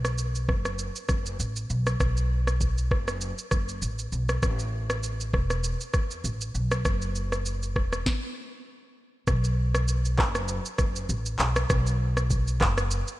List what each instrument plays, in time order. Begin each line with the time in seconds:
Already playing: upright bass B1
0.05 cross-stick, shaker
0.18 shaker
0.35 shaker
0.49 upright bass F#1, kick, cross-stick
0.65 cross-stick, shaker
0.79 shaker
0.96 shaker
1.09 upright bass F#1, kick, cross-stick, shaker
1.26 shaker
1.40 upright bass A1, shaker
1.56 shaker
1.70 upright bass B1, shaker
1.87 cross-stick, shaker
2.00 upright bass B1, kick, cross-stick, shaker
2.17 shaker
2.47 cross-stick, shaker
2.61 kick, shaker
2.78 shaker
2.91 upright bass F#1, kick, cross-stick
3.08 cross-stick, shaker
3.21 shaker
3.38 shaker
3.51 upright bass F#1, kick, cross-stick, shaker
3.69 shaker
3.82 upright bass A1, shaker
3.99 shaker
4.12 upright bass B1, shaker
4.29 cross-stick, shaker
4.43 upright bass A1, kick, cross-stick, shaker
4.59 shaker
4.90 cross-stick, shaker
5.03 shaker
5.20 shaker
5.33 upright bass E1, kick, cross-stick
5.50 cross-stick, shaker
5.64 shaker
5.81 shaker
5.94 upright bass E2, kick, cross-stick, shaker
6.11 shaker
6.24 upright bass A1, shaker
6.41 shaker
6.55 upright bass B1, shaker
6.71 cross-stick, shaker
6.85 upright bass F#1, kick, cross-stick, shaker
7.02 shaker
7.15 shaker
7.32 cross-stick, shaker
7.46 shaker
7.63 shaker
7.76 upright bass E1, kick, cross-stick
7.93 cross-stick, shaker
8.06 kick, snare
9.27 upright bass B1, kick, cross-stick, shaker
9.44 shaker
9.75 cross-stick, shaker
9.88 shaker
10.05 shaker
10.18 upright bass F#1, kick, cross-stick, clap
10.35 cross-stick, shaker
10.48 shaker
10.65 shaker
10.78 upright bass F#1, kick, cross-stick, shaker
10.96 shaker
11.09 upright bass A1, shaker
11.26 shaker
11.39 upright bass B1, clap, shaker
11.56 cross-stick, shaker
11.70 upright bass B1, kick, cross-stick, shaker
11.87 shaker
12.17 cross-stick, shaker
12.30 kick, shaker
12.48 shaker
12.61 upright bass F#1, kick, cross-stick, clap
12.78 cross-stick, shaker
12.91 shaker
13.08 shaker